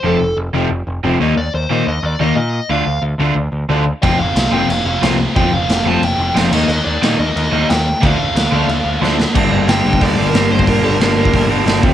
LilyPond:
<<
  \new Staff \with { instrumentName = "Lead electric guitar" } { \time 4/4 \key g \minor \tempo 4 = 181 a'4 r2. | d''8 c''4 ees''8 d''8 ees''8 ees''4 | f''4 r2. | g''8 f''4 g''8 f''8 f''8 r4 |
g''8 f''4 a''8 g''8 g''8 r4 | ees''8 d''4 ees''4. g''4 | f''2. r4 | r4 g''4 d''8. bes'8. c''8 |
bes'8 bes'2 r4. | }
  \new Staff \with { instrumentName = "Overdriven electric guitar" } { \clef bass \time 4/4 \key g \minor <f, c f a c'>8 r4 <f, c f a c'>8 r4 <f, c f a c'>8 <ees g bes ees'>8 | r4 <ees g bes ees'>8 r4 <ees g bes ees'>8 r4 | <d a d' f'>8 r4 <d a d' f'>8 r4 <d a d' f'>8 r8 | <f a c' f'>8 r4 <f a c' f'>8 r4 <f a c' f'>8 r8 |
<f a c' f'>8 r4 <f a c' f'>8 r4 <f a c' f'>8 <ees g bes ees'>8 | r4 <ees g bes ees'>8 r4 <ees g bes ees'>8 r4 | <d f a d'>8 r4 <d f a d'>8 r4 <d f a d'>8 r8 | <g, d g bes d'>8 <g, d g bes d'>8 <g, d g bes d'>8 <g, d g bes d'>8 <g, d g bes d'>8 <g, d g bes d'>8 <g, d g bes d'>8 <g, d g bes d'>8 |
<g, d g bes d'>8 <g, d g bes d'>8 <g, d g bes d'>8 <g, d g bes d'>8 <g, d g bes d'>8 <g, d g bes d'>8 <g, d g bes d'>8 <f, c f a c'>8 | }
  \new Staff \with { instrumentName = "Distorted electric guitar" } { \clef bass \time 4/4 \key g \minor r1 | r1 | r1 | <f, c f>1 |
<f, c f>2.~ <f, c f>8 <ees bes ees'>8~ | <ees bes ees'>2.~ <ees bes ees'>8 r8 | <d a d'>1 | r1 |
r1 | }
  \new Staff \with { instrumentName = "Overdriven electric guitar" } { \clef bass \time 4/4 \key g \minor <f, c f>8 r4 <f, c f>8 r4 <f, c f>8 <ees bes ees'>8 | r4 <ees bes ees'>8 r4 <ees bes ees'>8 r4 | <d a d'>8 r4 <d a d'>8 r4 <d a d'>8 r8 | <f, c f>8 r4 <f, c f>8 r4 <f, c f>8 r8 |
<f, c f>8 r4 <f, c f>8 r4 <f, c f>8 <ees bes ees'>8 | r4 <ees bes ees'>8 r4 <ees bes ees'>8 r4 | <d a d'>8 r4 <d a d'>8 r4 <d a d'>8 r8 | <g, d g>8 <g, d g>8 <g, d g>8 <g, d g>8 <g, d g>8 <g, d g>8 <g, d g>8 <g, d g>8 |
<g, d g>8 <g, d g>8 <g, d g>8 <g, d g>8 <g, d g>8 <g, d g>8 <g, d g>8 <f, c f>8 | }
  \new Staff \with { instrumentName = "Picked electric bass" } { \clef bass \time 4/4 \key g \minor f,,8 f,,8 f,,8 f,,8 f,,8 f,,8 f,,8 ees,8 | ees,8 ees,8 bes,8 ees,8 ees,8 ees,8 bes,4 | d,8 d,8 d,8 d,8 d,8 d,8 d,4 | f,,8 f,,8 c,8 f,,8 f,,8 f,,8 c,4 |
f,,8 f,,8 f,,8 f,,8 f,,8 f,,8 f,,8 ees,8 | ees,8 ees,8 bes,8 ees,8 ees,8 ees,8 ees,4 | d,8 d,8 d,8 d,8 d,8 d,8 d,4 | g,,8 g,,8 g,,8 g,,8 d,8 g,,8 g,,8 g,,8 |
g,,8 g,,8 g,,4 g,,4 g,,8 f,,8 | }
  \new DrumStaff \with { instrumentName = "Drums" } \drummode { \time 4/4 r4 r4 r4 r4 | r4 r4 r4 r4 | r4 r4 r4 r4 | <cymc bd>4 <cymc sn>4 cymc4 <cymc sn>4 |
<cymc bd>4 <cymc sn>4 cymc4 <cymc sn>8 cymc8 | cymc4 <cymc sn>4 cymc4 <cymc sn>4 | <cymc bd>4 <cymc sn>4 cymc4 sn8 sn8 | <cymc bd>4 <hho sn>8. bd16 <hho bd>4 <hho sn>8. bd16 |
<hho bd>4 <hho sn>8. bd16 <hho bd>4 <hho sn>8 bd8 | }
>>